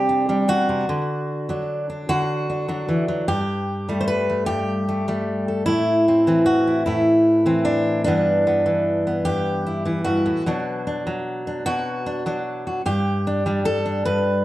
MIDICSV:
0, 0, Header, 1, 2, 480
1, 0, Start_track
1, 0, Tempo, 797872
1, 534, Time_signature, 6, 3, 24, 8
1, 8691, End_track
2, 0, Start_track
2, 0, Title_t, "Steel-string acoustic guitar"
2, 0, Program_c, 0, 25
2, 0, Note_on_c, 0, 48, 64
2, 0, Note_on_c, 0, 55, 57
2, 0, Note_on_c, 0, 60, 40
2, 0, Note_on_c, 0, 67, 106
2, 54, Note_on_c, 0, 62, 46
2, 167, Note_off_c, 0, 55, 0
2, 174, Note_on_c, 0, 55, 60
2, 176, Note_off_c, 0, 62, 0
2, 178, Note_on_c, 0, 62, 45
2, 288, Note_off_c, 0, 48, 0
2, 290, Note_on_c, 0, 47, 57
2, 291, Note_off_c, 0, 67, 0
2, 293, Note_on_c, 0, 66, 91
2, 412, Note_off_c, 0, 47, 0
2, 415, Note_on_c, 0, 48, 62
2, 505, Note_off_c, 0, 55, 0
2, 507, Note_off_c, 0, 60, 0
2, 533, Note_off_c, 0, 48, 0
2, 535, Note_on_c, 0, 50, 68
2, 897, Note_on_c, 0, 54, 54
2, 899, Note_off_c, 0, 62, 0
2, 902, Note_on_c, 0, 62, 43
2, 1138, Note_off_c, 0, 62, 0
2, 1140, Note_on_c, 0, 62, 40
2, 1249, Note_off_c, 0, 66, 0
2, 1250, Note_off_c, 0, 50, 0
2, 1256, Note_on_c, 0, 50, 69
2, 1258, Note_on_c, 0, 66, 100
2, 1494, Note_off_c, 0, 62, 0
2, 1502, Note_on_c, 0, 62, 43
2, 1607, Note_off_c, 0, 54, 0
2, 1611, Note_off_c, 0, 62, 0
2, 1615, Note_on_c, 0, 54, 56
2, 1619, Note_on_c, 0, 62, 49
2, 1733, Note_off_c, 0, 54, 0
2, 1736, Note_on_c, 0, 52, 59
2, 1853, Note_off_c, 0, 52, 0
2, 1855, Note_on_c, 0, 54, 59
2, 1946, Note_off_c, 0, 50, 0
2, 1947, Note_off_c, 0, 62, 0
2, 1971, Note_off_c, 0, 66, 0
2, 1973, Note_on_c, 0, 43, 69
2, 1973, Note_on_c, 0, 67, 89
2, 1974, Note_off_c, 0, 54, 0
2, 2338, Note_on_c, 0, 55, 58
2, 2343, Note_on_c, 0, 57, 46
2, 2407, Note_off_c, 0, 67, 0
2, 2410, Note_on_c, 0, 72, 67
2, 2450, Note_off_c, 0, 72, 0
2, 2452, Note_on_c, 0, 71, 96
2, 2581, Note_off_c, 0, 57, 0
2, 2584, Note_on_c, 0, 57, 39
2, 2683, Note_off_c, 0, 71, 0
2, 2685, Note_on_c, 0, 67, 96
2, 2686, Note_off_c, 0, 43, 0
2, 2694, Note_on_c, 0, 43, 74
2, 2932, Note_off_c, 0, 57, 0
2, 2939, Note_on_c, 0, 57, 44
2, 3051, Note_off_c, 0, 57, 0
2, 3053, Note_off_c, 0, 55, 0
2, 3055, Note_on_c, 0, 55, 58
2, 3058, Note_on_c, 0, 57, 42
2, 3288, Note_off_c, 0, 67, 0
2, 3298, Note_on_c, 0, 69, 43
2, 3384, Note_off_c, 0, 43, 0
2, 3386, Note_off_c, 0, 69, 0
2, 3404, Note_on_c, 0, 64, 89
2, 3415, Note_on_c, 0, 45, 67
2, 3433, Note_off_c, 0, 55, 0
2, 3655, Note_off_c, 0, 57, 0
2, 3659, Note_on_c, 0, 60, 46
2, 3770, Note_off_c, 0, 60, 0
2, 3773, Note_on_c, 0, 52, 57
2, 3777, Note_on_c, 0, 60, 44
2, 3882, Note_off_c, 0, 64, 0
2, 3885, Note_on_c, 0, 66, 86
2, 4015, Note_on_c, 0, 64, 40
2, 4119, Note_off_c, 0, 64, 0
2, 4123, Note_off_c, 0, 66, 0
2, 4126, Note_off_c, 0, 45, 0
2, 4126, Note_on_c, 0, 64, 78
2, 4134, Note_on_c, 0, 45, 73
2, 4479, Note_off_c, 0, 52, 0
2, 4483, Note_off_c, 0, 60, 0
2, 4486, Note_on_c, 0, 52, 62
2, 4490, Note_on_c, 0, 60, 46
2, 4601, Note_on_c, 0, 62, 78
2, 4822, Note_off_c, 0, 60, 0
2, 4832, Note_off_c, 0, 62, 0
2, 4839, Note_on_c, 0, 62, 83
2, 4848, Note_off_c, 0, 64, 0
2, 4849, Note_off_c, 0, 52, 0
2, 4852, Note_off_c, 0, 45, 0
2, 4852, Note_on_c, 0, 43, 67
2, 4856, Note_on_c, 0, 52, 46
2, 4860, Note_on_c, 0, 59, 50
2, 5093, Note_off_c, 0, 59, 0
2, 5095, Note_on_c, 0, 59, 47
2, 5202, Note_off_c, 0, 52, 0
2, 5209, Note_on_c, 0, 52, 58
2, 5453, Note_off_c, 0, 59, 0
2, 5456, Note_on_c, 0, 59, 40
2, 5564, Note_off_c, 0, 43, 0
2, 5564, Note_on_c, 0, 67, 92
2, 5571, Note_on_c, 0, 43, 70
2, 5804, Note_off_c, 0, 62, 0
2, 5814, Note_on_c, 0, 64, 46
2, 5921, Note_off_c, 0, 52, 0
2, 5926, Note_off_c, 0, 64, 0
2, 5928, Note_on_c, 0, 52, 57
2, 5933, Note_on_c, 0, 64, 44
2, 6040, Note_off_c, 0, 43, 0
2, 6041, Note_off_c, 0, 67, 0
2, 6043, Note_on_c, 0, 66, 84
2, 6048, Note_on_c, 0, 43, 58
2, 6169, Note_off_c, 0, 43, 0
2, 6170, Note_on_c, 0, 45, 57
2, 6263, Note_off_c, 0, 64, 0
2, 6289, Note_off_c, 0, 52, 0
2, 6290, Note_off_c, 0, 45, 0
2, 6295, Note_on_c, 0, 47, 69
2, 6298, Note_on_c, 0, 54, 47
2, 6299, Note_off_c, 0, 59, 0
2, 6302, Note_on_c, 0, 62, 47
2, 6537, Note_off_c, 0, 62, 0
2, 6539, Note_on_c, 0, 62, 51
2, 6650, Note_off_c, 0, 54, 0
2, 6658, Note_on_c, 0, 54, 61
2, 6898, Note_off_c, 0, 62, 0
2, 6901, Note_on_c, 0, 62, 46
2, 7006, Note_off_c, 0, 66, 0
2, 7011, Note_off_c, 0, 47, 0
2, 7014, Note_on_c, 0, 66, 98
2, 7018, Note_on_c, 0, 47, 78
2, 7250, Note_off_c, 0, 62, 0
2, 7258, Note_on_c, 0, 62, 47
2, 7368, Note_off_c, 0, 54, 0
2, 7372, Note_off_c, 0, 62, 0
2, 7375, Note_on_c, 0, 54, 62
2, 7379, Note_on_c, 0, 62, 46
2, 7612, Note_off_c, 0, 66, 0
2, 7621, Note_on_c, 0, 66, 46
2, 7704, Note_off_c, 0, 54, 0
2, 7705, Note_off_c, 0, 47, 0
2, 7706, Note_off_c, 0, 62, 0
2, 7707, Note_off_c, 0, 66, 0
2, 7734, Note_on_c, 0, 43, 72
2, 7737, Note_on_c, 0, 67, 87
2, 7983, Note_on_c, 0, 62, 44
2, 8094, Note_off_c, 0, 62, 0
2, 8097, Note_on_c, 0, 55, 64
2, 8102, Note_on_c, 0, 62, 44
2, 8211, Note_off_c, 0, 67, 0
2, 8214, Note_on_c, 0, 69, 92
2, 8329, Note_off_c, 0, 62, 0
2, 8336, Note_on_c, 0, 62, 42
2, 8452, Note_off_c, 0, 43, 0
2, 8452, Note_off_c, 0, 69, 0
2, 8455, Note_on_c, 0, 71, 89
2, 8460, Note_on_c, 0, 43, 72
2, 8691, Note_off_c, 0, 43, 0
2, 8691, Note_off_c, 0, 55, 0
2, 8691, Note_off_c, 0, 62, 0
2, 8691, Note_off_c, 0, 71, 0
2, 8691, End_track
0, 0, End_of_file